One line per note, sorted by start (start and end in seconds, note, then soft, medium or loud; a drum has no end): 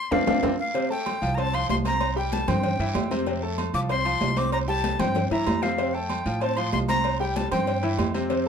0.00 0.14 C6 loud
0.11 0.23 F2 medium
0.11 0.22 C4 loud
0.11 0.22 D4 loud
0.11 0.22 F4 medium
0.11 0.43 F5 medium
0.11 high bongo loud
0.11 high conga loud
0.11 high timbale loud
0.11 long guiro loud
0.27 0.39 F2 loud
0.27 0.37 C4 loud
0.27 0.37 D4 medium
0.27 0.37 F4 medium
0.27 high bongo medium
0.27 high conga loud
0.27 high timbale loud
0.27 long guiro loud
0.43 0.55 F2 medium
0.43 0.53 C4 medium
0.43 0.53 D4 medium
0.43 0.53 F4 loud
0.43 high bongo medium
0.43 high conga medium
0.43 high timbale loud
0.43 long guiro medium
0.60 0.89 F5 medium
0.74 0.87 C3 medium
0.74 0.87 C4 medium
0.74 0.88 C5 medium
0.74 cowbell loud
0.74 high conga soft
0.74 low agogo medium
0.74 long guiro medium
0.90 1.16 A3 medium
0.90 1.16 A4 medium
0.90 1.36 G5 medium
0.90 1.16 A5 medium
0.90 high conga soft
1.06 cowbell medium
1.06 high conga medium
1.06 low timbale medium
1.06 low agogo loud
1.06 short guiro medium
1.22 1.66 C2 loud
1.22 1.35 F3 medium
1.22 1.35 F4 medium
1.22 1.35 F5 medium
1.22 cowbell medium
1.22 high conga soft
1.22 short guiro medium
1.35 1.50 C4 medium
1.35 1.50 C5 medium
1.35 1.40 A#5 medium
1.35 1.51 C6 medium
1.35 cowbell loud
1.35 high conga soft
1.35 low agogo medium
1.35 long guiro medium
1.39 1.56 A5 loud
1.53 1.79 F3 medium
1.53 1.79 F4 medium
1.53 1.80 F5 medium
1.53 1.69 C6 loud
1.53 cowbell medium
1.53 high conga soft
1.53 low agogo loud
1.69 2.43 C2 medium
1.69 1.76 C6 loud
1.69 cowbell medium
1.69 high conga medium
1.69 low timbale medium
1.69 short guiro medium
1.85 2.11 C4 medium
1.85 2.11 C5 medium
1.85 2.15 A#5 loud
1.85 2.11 C6 medium
1.85 cowbell medium
1.85 high conga medium
1.85 low agogo medium
1.85 short guiro medium
2.01 cowbell loud
2.01 high conga soft
2.01 low agogo loud
2.01 long guiro medium
2.16 2.42 G3 medium
2.16 2.42 G4 medium
2.16 2.42 G5 medium
2.16 2.35 G5 medium
2.16 high conga soft
2.32 2.50 A5 medium
2.32 cowbell medium
2.32 high conga loud
2.32 low timbale medium
2.32 low agogo medium
2.32 short guiro medium
2.48 2.77 G2 loud
2.48 2.74 C4 medium
2.48 2.74 C5 medium
2.48 3.11 G5 medium
2.48 2.74 C6 medium
2.48 cowbell medium
2.48 high conga loud
2.48 low conga medium
2.48 low agogo loud
2.48 short guiro medium
2.63 cowbell loud
2.63 high conga soft
2.63 low conga medium
2.63 low agogo medium
2.63 long guiro medium
2.79 2.94 G2 medium
2.79 3.05 E3 medium
2.79 3.06 E4 medium
2.79 3.06 E5 medium
2.79 cowbell medium
2.79 high conga soft
2.95 3.68 F2 loud
2.95 cowbell medium
2.95 high conga medium
2.95 low timbale medium
2.95 low agogo loud
2.95 short guiro medium
3.11 3.24 C3 medium
3.11 3.24 C4 medium
3.11 3.24 C5 medium
3.11 cowbell medium
3.11 high conga medium
3.11 short guiro medium
3.26 3.40 C3 medium
3.26 3.40 C4 medium
3.26 3.40 C5 medium
3.26 cowbell loud
3.26 high conga soft
3.26 low agogo medium
3.26 long guiro medium
3.42 3.68 A3 medium
3.42 3.68 A4 medium
3.42 3.68 A5 medium
3.42 high conga soft
3.58 cowbell medium
3.58 high conga medium
3.58 low timbale medium
3.58 low agogo loud
3.58 short guiro medium
3.73 4.18 C2 medium
3.73 3.87 F3 medium
3.73 3.87 F4 medium
3.73 3.87 F5 medium
3.73 3.80 D6 loud
3.73 cowbell medium
3.73 high conga soft
3.73 short guiro medium
3.89 4.03 C4 medium
3.89 4.03 C5 medium
3.89 4.39 C6 loud
3.89 4.03 C6 medium
3.89 cowbell loud
3.89 high conga soft
3.89 low agogo medium
3.89 long guiro medium
4.05 4.31 F3 medium
4.05 4.31 F4 medium
4.05 4.31 F5 medium
4.05 cowbell medium
4.05 high conga soft
4.05 low agogo loud
4.21 4.94 C2 medium
4.21 cowbell medium
4.21 high conga medium
4.21 low timbale medium
4.21 short guiro medium
4.36 4.62 C4 medium
4.36 4.63 C5 medium
4.36 4.63 C6 medium
4.36 4.52 D6 loud
4.36 cowbell medium
4.36 high conga medium
4.36 low agogo medium
4.36 short guiro medium
4.52 4.59 A#5 loud
4.52 cowbell loud
4.52 high conga soft
4.52 low agogo loud
4.52 long guiro medium
4.68 4.94 G3 medium
4.68 4.94 G4 medium
4.68 4.94 G5 medium
4.68 5.01 A5 loud
4.68 high conga soft
4.84 cowbell medium
4.84 high conga loud
4.84 low timbale medium
4.84 low agogo medium
4.84 short guiro medium
4.99 5.29 G2 loud
4.99 5.25 C4 medium
4.99 5.25 C5 medium
4.99 5.31 G5 loud
4.99 5.26 C6 medium
4.99 cowbell medium
4.99 high conga loud
4.99 low conga medium
4.99 low agogo loud
4.99 short guiro medium
5.15 cowbell loud
5.15 high bongo medium
5.15 high conga soft
5.15 low conga medium
5.15 low agogo medium
5.15 long guiro medium
5.31 5.46 G2 medium
5.31 5.57 E3 medium
5.31 5.57 E4 medium
5.31 5.57 E5 medium
5.31 5.64 A#5 loud
5.31 cowbell medium
5.31 low bongo medium
5.31 high conga soft
5.47 6.20 F2 medium
5.47 cowbell medium
5.47 low bongo medium
5.47 high conga medium
5.47 low timbale medium
5.47 low agogo loud
5.47 short guiro medium
5.62 5.76 C3 medium
5.62 5.76 C4 medium
5.62 5.76 C5 medium
5.62 5.96 F5 medium
5.62 cowbell medium
5.62 low bongo loud
5.62 high conga medium
5.62 short guiro medium
5.78 5.91 C3 medium
5.78 5.91 C4 medium
5.78 5.91 C5 medium
5.78 cowbell loud
5.78 high conga soft
5.78 low agogo medium
5.78 long guiro medium
5.94 6.20 A3 medium
5.94 6.20 A4 medium
5.94 6.43 G5 medium
5.94 6.20 A5 medium
5.94 high conga soft
6.10 cowbell medium
6.10 high conga medium
6.10 low timbale medium
6.10 low agogo loud
6.10 short guiro medium
6.26 6.70 A2 loud
6.26 6.39 F3 medium
6.26 6.39 F4 medium
6.26 6.39 F5 medium
6.26 cowbell medium
6.26 high conga soft
6.26 short guiro medium
6.41 6.54 C4 medium
6.41 6.55 C5 medium
6.41 6.58 A5 loud
6.41 6.55 C6 medium
6.41 cowbell loud
6.41 high conga soft
6.41 low agogo medium
6.41 long guiro medium
6.57 6.83 F3 medium
6.57 6.83 F4 medium
6.57 6.83 F5 medium
6.57 6.72 C6 loud
6.57 cowbell medium
6.57 high conga soft
6.57 low agogo loud
6.72 7.46 C2 loud
6.72 6.78 C6 medium
6.72 cowbell medium
6.72 high conga medium
6.72 low timbale medium
6.72 short guiro medium
6.88 7.14 C4 medium
6.88 7.15 C5 medium
6.88 7.18 A#5 loud
6.88 7.15 C6 medium
6.88 cowbell medium
6.88 high conga medium
6.88 low agogo medium
6.88 short guiro medium
7.04 cowbell loud
7.04 high conga soft
7.04 low agogo loud
7.04 long guiro medium
7.20 7.46 G3 medium
7.20 7.46 G4 medium
7.20 7.38 G5 medium
7.20 7.46 G5 medium
7.20 high conga soft
7.36 7.51 A5 loud
7.36 cowbell medium
7.36 high conga loud
7.36 low timbale medium
7.36 low agogo medium
7.36 short guiro medium
7.51 7.95 G2 medium
7.51 7.77 C4 medium
7.51 7.78 C5 medium
7.51 8.11 G5 medium
7.51 7.78 C6 medium
7.51 cowbell medium
7.51 high conga medium
7.51 low conga medium
7.51 low agogo loud
7.51 short guiro medium
7.67 cowbell loud
7.67 high conga soft
7.67 low agogo medium
7.67 long guiro medium
7.83 8.09 E3 medium
7.83 8.09 E4 medium
7.83 8.09 E5 medium
7.83 cowbell medium
7.83 high conga soft
7.98 8.48 F2 medium
7.98 cowbell medium
7.98 high conga medium
7.98 low timbale medium
7.98 low agogo loud
7.98 short guiro medium
8.14 8.27 C3 medium
8.14 8.28 C4 medium
8.14 8.28 C5 medium
8.14 cowbell medium
8.14 high conga medium
8.14 short guiro medium
8.30 8.43 C3 medium
8.30 8.43 C4 medium
8.30 8.43 C5 medium
8.30 cowbell loud
8.30 high conga soft
8.30 low agogo medium
8.30 long guiro medium